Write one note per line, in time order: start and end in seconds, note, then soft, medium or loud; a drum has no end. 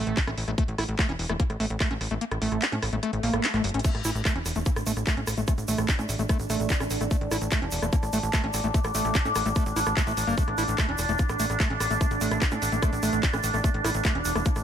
0.00 0.19 A3 medium
0.07 0.14 A1 medium
0.07 closed hi-hat soft
0.17 0.20 E4 loud
0.17 kick loud
0.17 clap loud
0.17 closed hi-hat medium
0.27 0.34 A1 medium
0.27 0.31 C#4 medium
0.27 cross-stick medium
0.27 closed hi-hat soft
0.38 0.44 A1 loud
0.38 open hi-hat loud
0.48 0.54 A1 medium
0.48 0.51 A3 medium
0.48 cross-stick soft
0.48 closed hi-hat soft
0.58 0.63 A3 loud
0.58 kick loud
0.58 closed hi-hat medium
0.68 0.75 A1 medium
0.68 closed hi-hat soft
0.78 0.85 A1 loud
0.78 0.84 E4 loud
0.78 cross-stick medium
0.78 open hi-hat loud
0.89 0.95 A1 loud
0.89 closed hi-hat soft
0.99 1.07 A3 loud
0.99 kick loud
0.99 cross-stick soft
0.99 clap loud
0.99 closed hi-hat medium
1.09 1.16 E1 medium
1.09 1.12 C#4 medium
1.09 closed hi-hat soft
1.19 1.26 E1 loud
1.19 open hi-hat loud
1.29 1.36 E1 loud
1.29 1.33 A3 medium
1.29 cross-stick medium
1.29 closed hi-hat soft
1.40 1.43 A#3 medium
1.40 kick loud
1.40 closed hi-hat loud
1.50 1.56 A1 medium
1.50 cross-stick soft
1.50 closed hi-hat soft
1.60 1.67 A1 loud
1.60 1.66 A3 medium
1.60 open hi-hat loud
1.70 1.77 A1 medium
1.70 closed hi-hat soft
1.80 1.89 A3 loud
1.80 kick loud
1.80 cross-stick medium
1.80 clap loud
1.80 closed hi-hat medium
1.91 1.97 A1 medium
1.91 1.94 C#4 medium
1.91 closed hi-hat soft
2.01 2.07 A1 loud
2.01 cross-stick soft
2.01 open hi-hat loud
2.11 2.18 A1 medium
2.11 2.14 A3 medium
2.11 closed hi-hat soft
2.21 2.25 A#3 medium
2.21 closed hi-hat loud
2.31 2.38 A1 medium
2.31 cross-stick medium
2.31 closed hi-hat soft
2.42 2.48 A1 loud
2.42 2.64 A3 medium
2.42 open hi-hat loud
2.52 2.58 A1 loud
2.52 cross-stick soft
2.52 closed hi-hat soft
2.62 2.65 E4 loud
2.62 clap loud
2.62 closed hi-hat medium
2.72 2.79 A2 medium
2.72 2.76 C#4 medium
2.72 closed hi-hat soft
2.82 2.89 A1 loud
2.82 cross-stick medium
2.82 open hi-hat loud
2.93 2.99 A1 loud
2.93 2.96 A3 medium
2.93 closed hi-hat soft
3.03 3.11 A3 loud
3.03 cross-stick soft
3.03 closed hi-hat loud
3.03 swell medium
3.13 3.20 A1 medium
3.13 closed hi-hat soft
3.23 3.30 A#1 loud
3.23 3.45 A#3 medium
3.23 open hi-hat loud
3.33 3.40 A1 medium
3.33 cross-stick medium
3.33 closed hi-hat soft
3.44 3.47 E4 medium
3.44 clap loud
3.44 closed hi-hat medium
3.54 3.60 A1 medium
3.54 3.62 A3 medium
3.54 cross-stick soft
3.54 clap soft
3.54 closed hi-hat soft
3.64 3.71 G1 loud
3.64 closed hi-hat medium
3.64 open hi-hat loud
3.69 closed hi-hat medium
3.74 3.81 A1 loud
3.74 3.80 C#4 medium
3.74 closed hi-hat medium
3.79 closed hi-hat medium
3.84 3.90 A3 loud
3.84 14.63 D4 medium
3.84 kick loud
3.84 closed hi-hat medium
3.84 crash medium
3.84 shaker soft
3.95 4.01 A1 medium
3.95 cross-stick soft
3.95 closed hi-hat soft
4.04 4.12 A1 loud
4.04 4.10 E4 loud
4.04 open hi-hat loud
4.04 shaker loud
4.15 4.22 A1 loud
4.15 closed hi-hat soft
4.15 shaker soft
4.25 4.34 A3 loud
4.25 kick loud
4.25 cross-stick medium
4.25 clap loud
4.25 closed hi-hat medium
4.25 shaker medium
4.35 4.42 E1 medium
4.35 4.39 C#4 medium
4.35 closed hi-hat soft
4.46 4.52 E1 loud
4.46 cross-stick soft
4.46 open hi-hat loud
4.46 shaker medium
4.55 4.63 E1 medium
4.55 4.59 A3 medium
4.55 closed hi-hat soft
4.55 shaker soft
4.66 4.69 A#3 medium
4.66 kick loud
4.66 closed hi-hat loud
4.66 shaker medium
4.76 4.83 A1 medium
4.76 cross-stick medium
4.76 closed hi-hat soft
4.76 shaker soft
4.86 4.93 A1 loud
4.86 4.92 A3 medium
4.86 open hi-hat loud
4.86 shaker medium
4.96 5.03 A1 medium
4.96 cross-stick soft
4.96 closed hi-hat soft
4.96 shaker soft
5.07 5.15 A3 loud
5.07 kick loud
5.07 clap loud
5.07 closed hi-hat medium
5.07 shaker soft
5.17 5.24 A1 medium
5.17 5.20 C#4 medium
5.17 closed hi-hat soft
5.27 5.34 A1 loud
5.27 cross-stick medium
5.27 open hi-hat loud
5.27 shaker medium
5.37 5.44 A1 medium
5.37 5.41 A3 medium
5.37 closed hi-hat soft
5.37 shaker soft
5.47 5.53 A3 medium
5.47 kick loud
5.47 cross-stick soft
5.47 closed hi-hat medium
5.47 shaker medium
5.58 5.65 A1 medium
5.58 closed hi-hat soft
5.58 shaker soft
5.68 5.75 A1 loud
5.68 5.90 A3 medium
5.68 open hi-hat loud
5.68 shaker loud
5.77 5.85 A1 loud
5.77 cross-stick medium
5.77 closed hi-hat soft
5.77 shaker soft
5.88 5.92 E4 loud
5.88 kick loud
5.88 clap loud
5.88 closed hi-hat medium
5.88 shaker medium
5.99 6.05 A2 medium
5.99 6.02 C#4 medium
5.99 cross-stick soft
5.99 closed hi-hat soft
5.99 shaker soft
6.09 6.16 A1 loud
6.09 open hi-hat loud
6.09 shaker loud
6.19 6.26 A1 medium
6.19 6.23 A3 medium
6.19 closed hi-hat soft
6.19 shaker soft
6.29 6.38 A3 loud
6.29 kick loud
6.29 cross-stick medium
6.29 closed hi-hat medium
6.29 shaker medium
6.40 6.46 A1 medium
6.40 closed hi-hat soft
6.40 shaker soft
6.50 6.56 A1 loud
6.50 6.72 A3 medium
6.50 cross-stick soft
6.50 open hi-hat loud
6.50 shaker medium
6.60 6.67 A1 medium
6.60 closed hi-hat soft
6.60 shaker soft
6.69 6.74 E4 loud
6.69 kick loud
6.69 clap loud
6.69 closed hi-hat medium
6.69 shaker medium
6.80 6.87 A1 medium
6.80 6.84 C#4 medium
6.80 cross-stick medium
6.80 closed hi-hat soft
6.80 shaker soft
6.90 6.97 A1 loud
6.90 open hi-hat loud
6.90 shaker loud
7.01 7.07 A1 medium
7.01 7.04 A3 medium
7.01 cross-stick soft
7.01 closed hi-hat soft
7.01 shaker soft
7.11 7.17 A3 loud
7.11 kick loud
7.11 closed hi-hat medium
7.11 shaker medium
7.21 7.28 A1 medium
7.21 closed hi-hat soft
7.31 7.38 A1 loud
7.31 7.37 E4 loud
7.31 cross-stick medium
7.31 open hi-hat loud
7.31 shaker medium
7.41 7.48 A1 loud
7.41 closed hi-hat soft
7.41 shaker soft
7.51 7.60 A3 loud
7.51 kick loud
7.51 cross-stick soft
7.51 clap loud
7.51 closed hi-hat medium
7.51 shaker medium
7.62 7.69 E1 medium
7.62 7.65 C#4 medium
7.62 closed hi-hat soft
7.71 7.79 E1 loud
7.71 open hi-hat loud
7.71 shaker medium
7.82 7.89 E1 medium
7.82 7.86 A3 medium
7.82 cross-stick medium
7.82 shaker soft
7.93 7.96 A#3 medium
7.93 kick loud
7.93 closed hi-hat medium
7.93 shaker medium
8.03 8.09 A1 medium
8.03 cross-stick soft
8.03 closed hi-hat soft
8.03 shaker soft
8.13 8.20 A1 loud
8.13 8.19 A3 medium
8.13 open hi-hat loud
8.13 shaker loud
8.23 8.30 A1 medium
8.23 closed hi-hat soft
8.23 shaker soft
8.33 8.42 A3 loud
8.33 kick loud
8.33 cross-stick medium
8.33 clap loud
8.33 closed hi-hat medium
8.33 shaker soft
8.44 8.50 A1 medium
8.44 8.47 C#4 medium
8.44 closed hi-hat soft
8.54 8.61 A1 loud
8.54 cross-stick soft
8.54 open hi-hat loud
8.54 shaker loud
8.64 8.71 A1 medium
8.64 8.67 A3 medium
8.64 shaker soft
8.74 8.80 A3 medium
8.74 kick loud
8.74 closed hi-hat medium
8.74 shaker medium
8.84 8.91 A1 medium
8.84 cross-stick medium
8.84 closed hi-hat soft
8.84 shaker soft
8.95 9.01 A1 loud
8.95 9.17 A3 medium
8.95 open hi-hat loud
8.95 shaker loud
9.05 9.12 A1 loud
9.05 cross-stick soft
9.05 closed hi-hat soft
9.05 shaker soft
9.15 9.18 E4 loud
9.15 kick loud
9.15 clap loud
9.15 closed hi-hat medium
9.15 shaker medium
9.25 9.32 A2 medium
9.25 9.29 C#4 medium
9.25 closed hi-hat soft
9.25 shaker soft
9.35 9.42 A1 loud
9.35 cross-stick medium
9.35 open hi-hat loud
9.35 shaker medium
9.46 9.52 A1 medium
9.46 9.49 A3 medium
9.46 closed hi-hat soft
9.46 shaker soft
9.55 9.64 A3 loud
9.55 kick loud
9.55 cross-stick soft
9.55 closed hi-hat medium
9.55 shaker medium
9.66 9.73 A1 medium
9.66 closed hi-hat soft
9.66 shaker soft
9.76 9.83 A1 loud
9.76 9.80 E4 loud
9.76 open hi-hat loud
9.76 shaker medium
9.86 9.93 A1 medium
9.86 cross-stick medium
9.86 closed hi-hat soft
9.86 shaker soft
9.97 10.02 A3 loud
9.97 kick loud
9.97 clap loud
9.97 closed hi-hat medium
9.97 shaker medium
10.07 10.14 A1 medium
10.07 10.12 A3 loud
10.07 cross-stick soft
10.07 closed hi-hat soft
10.07 shaker soft
10.17 10.24 A1 loud
10.17 open hi-hat loud
10.17 shaker medium
10.27 10.34 G1 medium
10.27 10.36 A#3 loud
10.27 closed hi-hat soft
10.27 shaker soft
10.37 10.43 A3 loud
10.37 kick loud
10.37 closed hi-hat medium
10.37 shaker soft
10.48 10.54 A1 medium
10.48 cross-stick soft
10.48 closed hi-hat soft
10.58 10.65 A1 loud
10.58 10.63 E4 loud
10.58 open hi-hat loud
10.58 shaker medium
10.68 10.75 A1 loud
10.68 closed hi-hat soft
10.68 shaker soft
10.78 10.87 A3 loud
10.78 kick loud
10.78 cross-stick medium
10.78 clap loud
10.78 closed hi-hat medium
10.78 shaker soft
10.89 10.95 E1 medium
10.89 10.92 C#4 medium
10.89 closed hi-hat soft
10.98 11.05 E1 loud
10.98 cross-stick soft
10.98 open hi-hat loud
10.98 shaker medium
11.09 11.16 E1 medium
11.09 11.12 A3 medium
11.09 closed hi-hat soft
11.09 shaker soft
11.18 11.22 A#3 medium
11.18 kick loud
11.18 closed hi-hat medium
11.18 shaker soft
11.29 11.36 A1 medium
11.29 cross-stick medium
11.29 closed hi-hat soft
11.29 shaker soft
11.40 11.46 A1 loud
11.40 11.45 A3 medium
11.40 open hi-hat loud
11.40 shaker medium
11.50 11.56 A1 medium
11.50 cross-stick soft
11.50 closed hi-hat soft
11.50 shaker soft
11.60 11.68 A3 loud
11.60 kick loud
11.60 clap loud
11.60 closed hi-hat medium
11.60 shaker soft
11.70 11.77 A1 medium
11.70 11.74 C#4 medium
11.70 closed hi-hat soft
11.80 11.87 A1 loud
11.80 cross-stick medium
11.80 open hi-hat loud
11.80 shaker loud
11.91 11.97 A1 medium
11.91 11.94 A3 medium
11.91 closed hi-hat soft
11.91 shaker soft
12.01 12.06 A3 medium
12.01 kick loud
12.01 cross-stick soft
12.01 closed hi-hat medium
12.01 shaker medium
12.11 12.18 A1 medium
12.11 closed hi-hat soft
12.11 shaker soft
12.21 12.28 A1 loud
12.21 12.43 A3 medium
12.21 open hi-hat loud
12.21 shaker medium
12.31 12.38 A1 loud
12.31 cross-stick medium
12.31 closed hi-hat soft
12.31 shaker soft
12.42 12.45 E4 loud
12.42 kick loud
12.42 clap loud
12.42 closed hi-hat medium
12.42 shaker soft
12.51 12.58 A2 medium
12.51 12.55 C#4 medium
12.51 cross-stick soft
12.51 closed hi-hat soft
12.51 shaker soft
12.62 12.69 A1 loud
12.62 open hi-hat loud
12.62 shaker medium
12.72 12.79 A1 medium
12.72 12.76 A3 medium
12.72 closed hi-hat soft
12.72 shaker soft
12.82 12.91 A3 loud
12.82 kick loud
12.82 cross-stick medium
12.82 closed hi-hat medium
12.82 shaker soft
12.93 12.99 A1 medium
12.93 closed hi-hat soft
12.93 shaker soft
13.03 13.09 A1 loud
13.03 13.25 A3 medium
13.03 cross-stick soft
13.03 open hi-hat loud
13.03 shaker loud
13.12 13.20 A1 medium
13.12 closed hi-hat soft
13.12 shaker soft
13.23 13.27 E4 loud
13.23 kick loud
13.23 clap loud
13.23 closed hi-hat medium
13.23 shaker soft
13.33 13.40 A1 medium
13.33 13.37 C#4 medium
13.33 cross-stick medium
13.33 closed hi-hat soft
13.33 shaker soft
13.44 13.50 A1 loud
13.44 open hi-hat loud
13.44 shaker loud
13.54 13.61 A1 medium
13.54 13.57 A3 medium
13.54 cross-stick soft
13.54 closed hi-hat soft
13.54 shaker soft
13.64 13.70 A3 loud
13.64 kick loud
13.64 closed hi-hat loud
13.64 shaker medium
13.74 13.81 A1 medium
13.74 closed hi-hat soft
13.84 13.91 A1 loud
13.84 13.90 E4 loud
13.84 cross-stick medium
13.84 open hi-hat loud
13.84 shaker medium
13.94 14.01 A1 medium
13.94 closed hi-hat soft
13.94 shaker soft
14.04 14.13 A3 loud
14.04 kick loud
14.04 cross-stick soft
14.04 clap loud
14.04 closed hi-hat medium
14.04 shaker medium
14.15 14.22 E1 medium
14.15 14.18 C#4 medium
14.15 closed hi-hat soft
14.25 14.32 E1 loud
14.25 open hi-hat loud
14.25 shaker medium
14.35 14.42 E1 loud
14.35 14.39 A3 medium
14.35 cross-stick medium
14.35 closed hi-hat soft
14.35 shaker soft
14.45 14.49 A#3 medium
14.45 kick loud
14.45 closed hi-hat loud
14.45 shaker soft
14.56 14.63 A1 medium
14.56 cross-stick soft
14.56 closed hi-hat soft
14.56 shaker soft